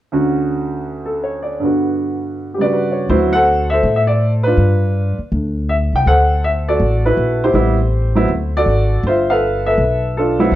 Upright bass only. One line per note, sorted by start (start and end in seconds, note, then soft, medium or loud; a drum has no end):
3.09 3.80 D2 medium
3.83 4.54 A2 medium
4.57 5.15 G2 medium
5.18 muted upright bass stroke soft
5.32 5.89 D2 medium
5.93 6.05 C2 medium
6.06 6.77 D2 medium
6.80 7.15 A1 medium
7.17 7.52 A#1 medium
7.54 8.25 A1 medium
8.28 8.63 D2 medium
8.66 9.01 G#1 medium
9.04 9.74 G1 medium
9.78 10.48 B1 medium
10.51 10.55 D2 medium